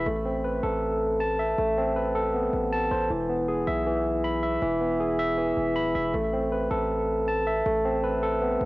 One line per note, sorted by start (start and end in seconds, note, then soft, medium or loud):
0.06 0.61 A1 loud
0.06 1.20 A3 medium
0.26 1.39 C4 medium
0.44 1.58 B4 medium
0.63 1.54 A1 loud
0.63 1.77 A4 loud
1.20 2.34 A5 medium
1.39 2.53 E5 medium
1.58 2.49 A1 loud
1.58 2.72 A3 medium
1.77 2.91 C4 medium
1.96 3.10 B4 medium
2.15 3.10 A4 medium
2.34 3.10 B3 medium
2.53 2.90 A1 loud
2.72 3.10 A5 loud
2.91 3.09 A1 loud
2.91 3.10 C5 medium
3.10 3.65 E1 loud
3.10 3.85 E3 medium
3.29 4.43 B3 medium
3.48 4.62 G#4 medium
3.67 4.58 B1 loud
3.67 4.42 E5 loud
3.86 4.61 E3 medium
4.24 5.38 B5 medium
4.43 5.18 E5 medium
4.62 5.53 E1 loud
4.62 5.37 E3 medium
4.81 5.95 B3 medium
5.00 6.14 G#4 medium
5.19 5.94 E5 loud
5.38 6.14 E3 medium
5.57 5.77 E1 loud
5.76 5.88 D1 loud
5.76 6.14 B5 loud
5.86 5.95 E1 loud
5.95 6.13 E1 loud
5.95 6.14 E5 medium
6.14 6.69 A1 loud
6.14 7.28 A3 medium
6.33 7.47 C4 medium
6.52 7.66 B4 medium
6.71 7.62 A1 loud
6.71 7.85 A4 medium
7.28 8.42 A5 loud
7.47 8.61 E5 medium
7.66 8.57 A1 loud
7.66 8.65 A3 medium
7.85 8.65 C4 medium
8.04 8.65 B4 medium
8.23 8.65 A4 loud
8.42 8.65 B3 medium
8.61 8.65 A1 loud